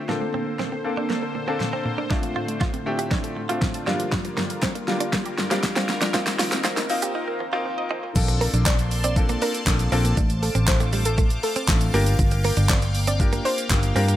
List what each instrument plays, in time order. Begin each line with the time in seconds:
0.08 synth arpeggio sound A#2, analog synth pad D3 A#3 A4 C5, grand piano A#3 C4 D4 A4, clean electric guitar A#3, snare
0.22 synth arpeggio sound A3, muted clean electric guitar stroke
0.34 synth arpeggio sound A#2, clean electric guitar C4
0.47 synth arpeggio sound A#3
0.59 synth arpeggio sound A#2, clean electric guitar C4, snare
0.72 synth arpeggio sound C4, muted clean electric guitar stroke
0.84 grand piano A#3 C4 D4 A4
0.97 synth arpeggio sound D4, clean electric guitar D4
1.10 clean electric guitar A#3, snare
1.22 synth arpeggio sound A#4
1.35 synth arpeggio sound A#2, muted clean electric guitar stroke
1.47 grand piano A#3 C4 D4 A4, clean electric guitar C4, synth arpeggio sound A5
1.60 synth arpeggio sound A#2, snare
1.73 clean electric guitar C4, synth arpeggio sound A#5
1.85 synth arpeggio sound A#2, muted clean electric guitar stroke
1.98 synth arpeggio sound A3, clean electric guitar D4
2.10 synth arpeggio sound A2, analog synth pad A2 A3 F4, grand piano A3 C4 D4 F4, clean electric guitar D4, kick, snare
2.23 synth arpeggio sound F3, muted clean electric guitar stroke, closed hi-hat
2.35 synth arpeggio sound A2, clean electric guitar F4
2.48 synth arpeggio sound A3, closed hi-hat
2.61 synth arpeggio sound A2, clean electric guitar F4, kick, snare
2.73 synth arpeggio sound C4, muted clean electric guitar stroke, closed hi-hat
2.86 grand piano A3 C4 D4 G4
2.99 synth arpeggio sound D4, clean electric guitar G4, closed hi-hat
3.11 clean electric guitar D4, kick, snare
3.24 synth arpeggio sound A4, closed hi-hat
3.37 synth arpeggio sound A2, muted clean electric guitar stroke
3.49 grand piano A3 C4 D4 F4, clean electric guitar F4, synth arpeggio sound F5, closed hi-hat
3.62 synth arpeggio sound A2, kick, snare
3.74 synth arpeggio sound A5, closed hi-hat
3.87 synth arpeggio sound G2, grand piano G3 A#3 D4 F4, analog synth pad G3 A#4, clean electric guitar D4, snare
4.00 synth arpeggio sound F3, closed hi-hat
4.12 synth arpeggio sound G2, clean electric guitar G3, kick, snare
4.25 synth arpeggio sound F3, muted clean electric guitar stroke, closed hi-hat
4.37 synth arpeggio sound G2, clean electric guitar A#3, snare
4.50 synth arpeggio sound G3, closed hi-hat
4.63 synth arpeggio sound G2, clean electric guitar C4, kick, snare, clap
4.75 synth arpeggio sound A#3, muted clean electric guitar stroke, closed hi-hat
4.88 grand piano G3 A#3 D4 F4, snare
5.00 clean electric guitar D4, synth arpeggio sound D4, closed hi-hat
5.13 clean electric guitar A#3, kick, snare
5.26 synth arpeggio sound G4, closed hi-hat
5.38 synth arpeggio sound G2, muted clean electric guitar stroke, snare
5.51 grand piano G3 A#3 D4 F4, clean electric guitar C4, synth arpeggio sound F5, snare, closed hi-hat
5.63 synth arpeggio sound G2, kick, snare, clap
5.76 clean electric guitar C4, synth arpeggio sound G5, snare, closed hi-hat
5.89 synth arpeggio sound G2, muted clean electric guitar stroke, snare
6.01 synth arpeggio sound F3, clean electric guitar D4, snare, closed hi-hat
6.14 analog synth pad D#3 C4, synth arpeggio sound F3, grand piano A#3 C4 D#4 F4, clean electric guitar F4, kick, snare, shaker
6.26 synth arpeggio sound A#3, muted clean electric guitar stroke, snare, closed hi-hat, shaker
6.39 synth arpeggio sound F3, clean electric guitar F4, snare, open hi-hat, shaker
6.52 synth arpeggio sound C4, snare, closed hi-hat, shaker
6.64 synth arpeggio sound F3, clean electric guitar F4, snare, clap, shaker
6.77 synth arpeggio sound D#4, muted clean electric guitar stroke, snare, closed hi-hat, shaker
6.89 grand piano A#3 C4 D#4 F4, open hi-hat, shaker
7.02 synth arpeggio sound F4, clean electric guitar G4, closed hi-hat, shaker
7.15 clean electric guitar D#4
7.28 synth arpeggio sound A#4
7.40 synth arpeggio sound F3, muted clean electric guitar stroke
7.53 grand piano A#3 C4 D#4 F4, clean electric guitar F4, synth arpeggio sound C5
7.65 synth arpeggio sound F3
7.78 synth arpeggio sound D#5
7.90 synth arpeggio sound F3, clean electric guitar D#4
8.03 synth arpeggio sound A#3
8.16 fingered electric bass A#1, grand piano A#3 C4 D4 F4 A4, analog synth pad A#3 D5 A5 C6, kick, crash, shaker
8.28 muted clean electric guitar stroke, closed hi-hat, shaker
8.41 clean electric guitar A#3, synth pluck A#4, open hi-hat, shaker
8.53 fingered electric bass A#1, clean electric guitar D4, closed hi-hat, shaker
8.66 clean electric guitar C4, synth pluck D5, kick, snare, clap, shaker
8.79 muted clean electric guitar stroke, closed hi-hat, shaker
8.91 open hi-hat, shaker
9.04 clean electric guitar C4, synth pluck D5, closed hi-hat, shaker
9.16 grand piano A#3 C4 D4 F4 A4, muted clean electric guitar stroke, kick, shaker
9.29 clean electric guitar A#3, closed hi-hat, shaker
9.42 clean electric guitar D4, synth pluck A#4, open hi-hat, shaker
9.54 closed hi-hat, shaker
9.67 fingered electric bass A#1, grand piano A#3 C4 D4 F4 A4, muted clean electric guitar stroke, kick, snare, clap, shaker
9.79 closed hi-hat, shaker
9.92 fingered electric bass A#1, grand piano A#3 C4 D4 F4 A4, clean electric guitar C4, open hi-hat, shaker
10.05 clean electric guitar A#3, closed hi-hat, shaker
10.17 fingered electric bass A1, clean electric guitar D4, analog synth pad C5 F5 D6, kick, shaker
10.30 closed hi-hat, shaker
10.42 synth pluck A4, muted clean electric guitar stroke, open hi-hat, shaker
10.55 fingered electric bass A1, clean electric guitar C4, closed hi-hat, shaker
10.67 grand piano A3 C4 D4 F4 A4, synth pluck C5, muted clean electric guitar stroke, kick, snare, clap, shaker
10.80 clean electric guitar A3, closed hi-hat, shaker
10.93 clean electric guitar G3, open hi-hat, shaker
11.05 synth pluck A4, closed hi-hat, shaker
11.18 clean electric guitar A3, kick, shaker
11.30 closed hi-hat, shaker
11.43 synth pluck A4, muted clean electric guitar stroke, open hi-hat, shaker
11.56 clean electric guitar C4, closed hi-hat, shaker
11.68 fingered electric bass A1, grand piano A3 C4 D4 F4 A4, kick, snare, clap, shaker
11.81 closed hi-hat, shaker
11.94 fingered electric bass G1, grand piano A#3 D4 F4 G4 A#4, clean electric guitar A#3, analog synth pad A#3 G5, open hi-hat, shaker
12.06 closed hi-hat, shaker
12.19 fingered electric bass G1, kick, shaker
12.31 muted clean electric guitar stroke, closed hi-hat, shaker
12.44 clean electric guitar A#3, synth pluck A#4, open hi-hat, shaker
12.57 fingered electric bass G1, clean electric guitar D4, closed hi-hat, shaker
12.69 clean electric guitar C4, synth pluck D5, kick, snare, clap, shaker
12.82 muted clean electric guitar stroke, closed hi-hat, shaker
12.95 open hi-hat, shaker
13.07 clean electric guitar C4, synth pluck D5, closed hi-hat, shaker
13.20 grand piano A#3 D4 F4 G4 A#4, muted clean electric guitar stroke, kick, shaker
13.33 clean electric guitar A#3, closed hi-hat, shaker
13.45 clean electric guitar D4, synth pluck C5, open hi-hat, shaker
13.58 closed hi-hat, shaker
13.70 fingered electric bass G1, grand piano A#3 D4 F4 G4 A#4, muted clean electric guitar stroke, kick, snare, clap, shaker
13.83 closed hi-hat, shaker
13.95 fingered electric bass G2, grand piano A#3 D4 F4 G4 A#4, clean electric guitar C4, open hi-hat, shaker
14.08 clean electric guitar A#3, closed hi-hat, shaker